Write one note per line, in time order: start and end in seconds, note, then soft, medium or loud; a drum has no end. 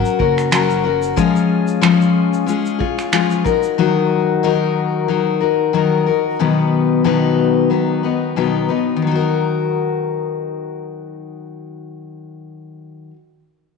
0.00 0.19 F#3 medium
0.00 0.19 C#4 medium
0.00 0.19 F#4 medium
0.00 0.18 A#4 medium
0.05 shaker soft
0.19 1.14 F#1 medium
0.19 0.51 C#4 soft
0.19 0.51 F#4 soft
0.19 0.52 A#4 soft
0.19 kick medium
0.38 finger snap soft
0.38 shaker soft
0.51 0.84 F#3 medium
0.51 0.85 C#4 medium
0.51 0.84 F#4 medium
0.51 0.82 A#4 medium
0.51 finger snap loud
0.51 shaker medium
0.70 shaker soft
0.84 1.16 C#4 soft
0.84 1.17 F#4 soft
0.84 1.17 A#4 medium
1.02 shaker soft
1.16 1.80 F3 medium
1.16 1.81 G#3 medium
1.16 1.81 C#4 medium
1.16 1.82 F4 medium
1.16 1.82 G#4 medium
1.16 kick loud
1.16 shaker medium
1.36 shaker soft
1.67 shaker medium
1.81 2.47 F3 medium
1.81 2.45 G#3 medium
1.81 2.46 C#4 medium
1.81 2.47 F4 medium
1.81 2.48 G#4 medium
1.81 finger snap medium
1.81 shaker medium
2.01 shaker soft
2.34 shaker soft
2.46 2.80 G#3 medium
2.46 2.80 C#4 medium
2.46 2.79 F4 medium
2.46 2.78 G#4 medium
2.46 shaker medium
2.66 shaker soft
2.79 3.12 C#4 soft
2.79 3.12 F4 soft
2.79 3.12 G#4 medium
2.79 kick medium
2.99 finger snap soft
2.99 shaker soft
3.12 3.45 F3 medium
3.12 3.46 G#3 medium
3.12 3.46 C#4 medium
3.12 3.46 F4 medium
3.12 3.44 G#4 medium
3.12 finger snap medium
3.12 shaker medium
3.31 shaker soft
3.45 3.78 D#4 medium
3.45 3.78 F#4 soft
3.45 3.78 A#4 medium
3.45 kick medium
3.45 shaker soft
3.63 shaker soft
3.78 4.43 D#3 medium
3.78 4.43 F#3 medium
3.78 4.44 D#4 medium
3.78 4.44 F#4 medium
3.78 4.43 A#4 medium
4.43 5.73 D#3 medium
4.43 5.08 F#3 medium
4.43 5.09 D#4 medium
4.43 5.10 F#4 medium
4.43 5.10 A#4 loud
5.08 5.41 F#3 medium
5.08 5.42 D#4 medium
5.08 5.40 F#4 medium
5.08 5.39 A#4 medium
5.41 5.73 D#4 soft
5.41 5.73 F#4 soft
5.41 5.74 A#4 medium
5.73 6.06 D#3 medium
5.73 6.07 F#3 medium
5.73 6.07 D#4 medium
5.73 6.07 F#4 medium
5.73 6.05 A#4 medium
6.06 6.39 D#4 soft
6.06 6.40 F#4 soft
6.06 6.39 A#4 medium
6.39 7.03 B2 medium
6.39 7.04 D#3 medium
6.39 7.04 F#3 medium
6.39 7.04 B3 medium
6.39 7.05 D#4 medium
6.39 7.05 B4 medium
7.04 7.70 B2 medium
7.04 8.36 D#3 medium
7.04 7.69 F#3 medium
7.04 7.70 B3 medium
7.04 7.71 D#4 medium
7.04 7.71 B4 medium
7.70 8.03 F#3 medium
7.70 8.03 B3 medium
7.70 8.03 D#4 medium
7.70 8.02 B4 medium
8.03 8.36 F#3 soft
8.03 8.36 B3 soft
8.03 8.36 D#4 soft
8.03 8.36 B4 soft
8.36 8.69 B2 medium
8.36 8.69 D#3 medium
8.36 8.69 F#3 medium
8.36 8.69 B3 medium
8.36 8.69 D#4 medium
8.36 8.67 B4 medium
8.68 9.01 F#3 soft
8.68 9.02 B3 soft
8.68 9.02 D#4 soft
8.68 9.01 B4 soft
8.96 13.10 D#3 medium
9.02 13.13 F#3 medium
9.07 13.16 D#4 medium
9.11 13.18 F#4 medium
9.15 13.20 A#4 medium